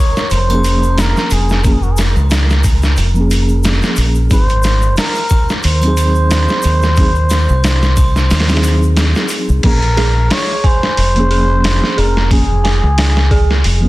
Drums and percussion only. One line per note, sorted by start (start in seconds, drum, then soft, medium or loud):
0.16 snare soft
0.16 shaker soft
0.30 open hi-hat medium
0.30 shaker soft
0.50 closed hi-hat soft
0.50 triangle medium
0.50 shaker soft
0.64 open hi-hat medium
0.64 shaker medium
0.83 shaker soft
0.98 snare loud
0.98 open hi-hat medium
0.98 shaker medium
1.16 snare soft
1.16 shaker soft
1.30 open hi-hat medium
1.30 shaker medium
1.49 snare soft
1.49 shaker soft
1.64 kick loud
1.64 open hi-hat medium
1.64 shaker soft
1.83 shaker soft
1.97 snare soft
1.97 open hi-hat medium
1.97 triangle soft
1.97 shaker medium
2.16 shaker soft
2.30 snare loud
2.30 open hi-hat medium
2.30 shaker soft
2.50 snare soft
2.50 shaker soft
2.64 kick medium
2.64 open hi-hat medium
2.64 shaker medium
2.82 snare soft
2.82 shaker soft
2.97 open hi-hat medium
2.97 shaker soft
3.15 shaker soft
3.31 open hi-hat medium
3.31 shaker medium
3.48 shaker soft
3.63 snare loud
3.63 open hi-hat medium
3.63 shaker soft
3.82 snare medium
3.82 shaker soft
3.96 open hi-hat medium
3.96 shaker medium
4.15 shaker soft
4.30 kick loud
4.30 open hi-hat medium
4.30 shaker soft
4.49 closed hi-hat soft
4.49 shaker soft
4.63 snare medium
4.63 open hi-hat medium
4.63 shaker medium
4.82 shaker soft
4.97 snare loud
4.97 open hi-hat medium
4.97 shaker soft
5.15 shaker soft
5.29 kick medium
5.29 open hi-hat medium
5.29 triangle medium
5.29 shaker medium
5.49 snare soft
5.49 shaker soft
5.63 open hi-hat medium
5.63 shaker soft
5.82 closed hi-hat soft
5.82 triangle medium
5.82 shaker soft
5.97 open hi-hat medium
5.97 shaker medium
6.15 shaker soft
6.30 snare loud
6.30 open hi-hat medium
6.30 shaker soft
6.48 snare soft
6.48 shaker soft
6.62 open hi-hat medium
6.62 shaker medium
6.82 snare soft
6.82 shaker soft
6.96 kick loud
6.96 open hi-hat medium
6.96 shaker soft
7.15 shaker soft
7.30 snare soft
7.30 open hi-hat medium
7.30 triangle medium
7.30 shaker medium
7.49 shaker soft
7.64 snare loud
7.64 open hi-hat medium
7.64 shaker soft
7.82 snare soft
7.82 shaker soft
7.97 kick medium
7.97 open hi-hat medium
7.97 triangle medium
7.97 shaker medium
8.16 snare soft
8.16 shaker soft
8.30 snare medium
8.30 open hi-hat medium
8.30 shaker medium
8.40 snare medium
8.40 open hi-hat medium
8.49 snare medium
8.49 open hi-hat medium
8.49 shaker soft
8.56 snare medium
8.56 open hi-hat medium
8.64 open hi-hat medium
8.64 shaker loud
8.83 shaker soft
8.97 snare loud
8.97 open hi-hat medium
8.97 shaker soft
9.15 snare medium
9.15 shaker soft
9.29 open hi-hat medium
9.29 shaker medium
9.48 shaker soft
9.63 kick loud
9.63 open hi-hat medium
9.63 crash medium
9.82 closed hi-hat soft
9.97 snare medium
9.97 open hi-hat medium
10.30 snare loud
10.30 open hi-hat medium
10.64 kick medium
10.64 open hi-hat medium
10.83 snare soft
10.97 open hi-hat medium
11.16 closed hi-hat soft
11.31 open hi-hat medium
11.64 snare loud
11.64 open hi-hat medium
11.84 snare soft
11.98 open hi-hat medium
12.17 snare soft
12.31 kick loud
12.31 open hi-hat medium
12.65 snare soft
12.65 open hi-hat medium
12.98 snare loud
12.98 open hi-hat loud
13.17 snare soft
13.31 kick medium
13.31 open hi-hat medium
13.51 snare soft
13.64 open hi-hat medium